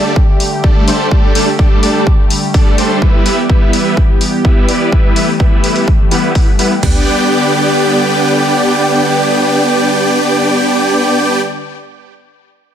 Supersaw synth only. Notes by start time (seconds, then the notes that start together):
Already playing: G3 A3 D4 A4 D5
0.64 G3 A3 D4 A4 D5
0.88 G3 A3 D4 A4 C5
1.11 G3 A3 D4 A4 D5
1.35 G3 A3 D4 A4 D5
1.59 G3 A3 D4 A4 D5
1.83 G3 A3 D4 A4 D5
2.54 G3 A3 D4 A4 D5
2.78 G3 A3 D4 A4 C5
3.02 G3 B3 E4 B4 E5
3.26 G3 B3 E4 B4 E5
3.50 G3 B3 E4 B4 E5
3.73 G3 B3 E4 B4 E5
4.45 G3 B3 E4 B4 E5
4.69 G3 B3 E4 B4 D5
4.92 G3 B3 E4 B4 E5
5.16 G3 B3 E4 B4 E5
5.40 G3 B3 E4 B4 E5
5.64 G3 B3 E4 B4 E5
6.12 G3 B3 E4 B4 F#5
6.35 G3 B3 E4 B4 F#5
6.59 G3 B3 E4 B4 F#5
6.83 B3 D4 G4 D5 G5